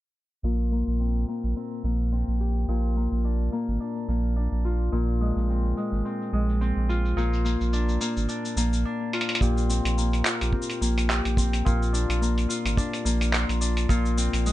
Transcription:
0.43 A#1 A#2, cabasa
0.61 cabasa
0.69 A#3, cabasa
0.73 cabasa
0.87 A#1, cabasa
1.00 C4, cabasa
1.16 cabasa
1.28 A#3, cabasa
1.44 A#1, cabasa
1.56 C4, cabasa
1.72 cabasa
1.84 A#1 A#3, cabasa
2.00 cabasa
2.12 C4, cabasa
2.28 A#1
2.40 G4, cabasa
2.57 cabasa
2.68 A#1 A#2, cabasa
2.74 cabasa
2.78 cabasa
2.85 cabasa
2.88 cabasa
2.93 A#3, cabasa
2.97 cabasa
3.12 A#1, cabasa
3.25 D4, cabasa
3.41 cabasa
3.52 A#3, cabasa
3.68 G#1, cabasa
3.80 D4, cabasa
3.97 cabasa
4.08 A#1 A#3, cabasa
4.25 cabasa
4.36 D4, cabasa
4.52 A#1
4.65 F4, cabasa
4.81 cabasa
4.92 A#1 A#2, cabasa
5.09 cabasa
5.21 G#3
5.36 A#1, cabasa
5.49 C4, cabasa
5.65 cabasa
5.77 G#3, cabasa
5.92 G#1, cabasa
6.05 C4, cabasa
6.22 cabasa
6.33 A#1 G#3
6.49 cabasa
6.61 C4, cabasa
6.76 A#1
6.89 F4, cabasa
7.05 cabasa
7.16 A#1 A#2, cabasa
7.33 cabasa
7.45 A#3, cabasa
7.61 A#1, cabasa
7.73 D4, cabasa
7.89 cabasa
8.01 A#3, cabasa
8.17 G#1, cabasa
8.28 D4, cabasa
8.45 cabasa
8.56 A#1 A#3, cabasa
8.73 cabasa
8.85 D4
9.13 F4, closed hi-hat
9.21 closed hi-hat
9.29 closed hi-hat
9.35 closed hi-hat
9.41 A#1 A#2 G4, kick, cabasa
9.58 cabasa
9.69 C4, cabasa
9.85 A#1, closed hi-hat, cabasa
9.97 A#3, cabasa
10.13 closed hi-hat, cabasa
10.25 F4, clap, cabasa
10.40 A#1 G4, closed hi-hat, cabasa
10.53 C4, kick
10.62 cabasa
10.70 closed hi-hat, cabasa
10.81 A#1 A#3, cabasa
10.98 closed hi-hat, cabasa
11.09 G4, clap, cabasa
11.25 A#1, closed hi-hat, cabasa
11.37 C4, kick, cabasa
11.53 closed hi-hat, cabasa
11.65 A#1 A#2 F4, kick, cabasa
11.82 cabasa
11.93 D4, cabasa
12.09 A#1, closed hi-hat, cabasa
12.21 A#3, cabasa
12.38 closed hi-hat, cabasa
12.49 F4, cabasa
12.65 G#1, closed hi-hat, cabasa
12.77 D4, kick, cabasa
12.93 closed hi-hat, cabasa
13.05 A#1 A#3, cabasa
13.21 closed hi-hat, cabasa
13.33 F4, clap, cabasa
13.49 A#1, closed hi-hat, cabasa
13.61 D4, cabasa
13.77 closed hi-hat, cabasa
13.89 A#1 A#2 F4, kick, cabasa
14.05 cabasa
14.17 C4, cabasa
14.33 A#1, closed hi-hat, cabasa
14.46 G#3, cabasa

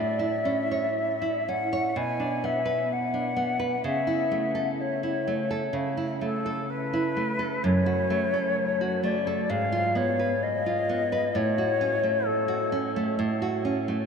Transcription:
Already playing: A2 E5
0.19 E4
0.45 C#4
0.71 C#5
1.22 E4
1.48 C#4 F#5
1.73 C#5
1.96 B2 G#5
2.20 D4
2.44 B3 E5
2.66 B4
2.92 F#5
3.14 D4
3.36 B3
3.60 B4
3.84 C#3 E5
4.07 E4
4.32 A3
4.55 A4
4.80 C#5
5.03 E4
5.28 A3
5.51 A4
5.73 C#3
5.97 E4
6.21 A3 A4
6.46 A4
6.70 B4
6.93 E4
7.17 A3
7.39 A4
7.63 F#2 C#5
7.86 F#4
8.10 A3
8.34 A4
8.81 F#4
9.03 A3 D5
9.27 A4
9.50 G#2 F5
9.72 F4
9.95 B3 C#5
10.19 B4
10.43 D#5
10.66 F4
10.89 B3
11.12 B4
11.35 A2 C#5
11.58 F#4
11.81 C#4
12.03 A3
12.26 A4
12.48 F#4
12.72 C#4
12.96 A3
13.19 A2
13.42 F#4
13.65 C#4
13.88 A3

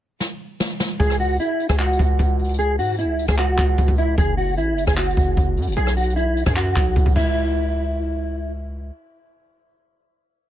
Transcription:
0.20 snare
0.60 snare
0.80 snare
1.00 C#2 G#4, kick, closed hi-hat
1.10 cross-stick
1.20 F#4, open hi-hat
1.40 E4, closed hi-hat
1.60 closed hi-hat
1.69 C#2 G#4, kick, cross-stick
1.79 F#4, clap, closed hi-hat
1.86 closed hi-hat
1.93 closed hi-hat
1.99 C#2, kick
2.19 C#2, kick, closed hi-hat
2.39 closed hi-hat
2.44 closed hi-hat
2.49 closed hi-hat
2.54 closed hi-hat
2.59 G#4, closed hi-hat
2.79 G#2 F#4, open hi-hat
2.98 E4, closed hi-hat
3.04 C#2
3.19 closed hi-hat
3.28 C#2 G#4, kick, cross-stick
3.38 F#4, clap, closed hi-hat
3.58 C#2, kick, clap, closed hi-hat
3.78 C#2, kick, closed hi-hat
3.88 C#2, kick, closed hi-hat
3.98 E4, closed hi-hat
4.18 F#1 G#4, kick, closed hi-hat
4.37 F#4, open hi-hat
4.57 A1 E4, closed hi-hat
4.72 F#1
4.78 closed hi-hat
4.87 F#1 G#4, kick, cross-stick
4.97 F#4, clap, closed hi-hat
5.04 closed hi-hat
5.11 closed hi-hat
5.17 F#1, kick, closed hi-hat
5.37 F#1, kick, closed hi-hat
5.57 F#2, closed hi-hat
5.62 closed hi-hat
5.67 F#1, closed hi-hat
5.72 closed hi-hat
5.77 B1 G#4, closed hi-hat
5.87 cross-stick
5.97 F#4, closed hi-hat, open hi-hat
6.03 closed hi-hat
6.10 closed hi-hat
6.16 E4, closed hi-hat
6.37 closed hi-hat
6.46 F#2 G#4, kick, cross-stick
6.56 F#4, clap, closed hi-hat
6.76 B1, kick, clap, closed hi-hat
6.96 B1, kick, closed hi-hat
7.06 B1, kick
7.16 C#2 E4, kick, crash

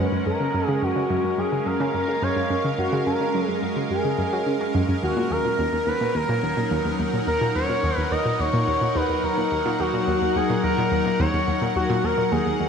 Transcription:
Already playing: G#3 C#4 A#4 F#5
0.00 B4
0.12 F#2
0.26 F#2 A#4
0.40 C#3
0.54 F#2
0.67 C#3 G#4
0.82 F#2 F#4
0.96 C#3
1.10 F#2 F5
1.24 F#2
1.38 F#2 G#4
1.52 C#3
1.66 F#2 A#4
1.80 C#3
1.94 F#2 A#4
2.08 C#3
2.22 F#2 C#5
2.37 F#2
2.50 F#2
2.64 C#3
2.79 F#2 F#4
2.92 C#3
3.07 F#2 A#4
3.21 C#3
3.34 F#2
3.48 F#2 G#4
3.63 F#2
3.77 C#3
3.91 F#2 G#4
4.05 C#3
4.19 F#2
4.33 F#3
4.47 C#3
4.61 C#4
4.75 F#2
4.89 F#2
5.03 D#2 F#3 F#4
5.17 A#2
5.31 D#2 A#4
5.42 A#2 D#4
5.59 D#2
5.73 D#2
5.87 D#2 B4
6.01 A#2
6.15 D#2 A#4 F#5
6.29 A#2
6.43 D#2
6.57 A#2
6.71 D#2
6.85 D#2
6.99 D#2
7.13 A#2
7.27 D#2 A#4
7.41 A#2
7.56 D#2 C#5
7.69 A#2
7.83 D#2
7.97 D#2 B4
8.11 D#2 D#5
8.25 A#2
8.40 D#2 C#5
8.53 A#2
8.68 D#2
8.81 A#2
8.96 D#2 B4
9.10 D#2
9.24 D#2 A#4
9.38 A#2
9.52 D#2
9.66 A#2
9.80 D#2 F#4
9.94 A#2
10.08 D#2
10.22 D#2
10.36 D#2 G#4
10.50 A#2
10.64 D#2 A#4
10.78 A#2
10.92 D#2 A#4
11.06 A#2
11.20 D#2 C#5
11.34 D#2
11.48 D#2
11.62 A#2
11.76 D#2 F#4
11.90 A#2
12.04 D#2 A#4
12.18 A#2
12.32 D#2 G#4
12.46 D#2
12.60 D#2

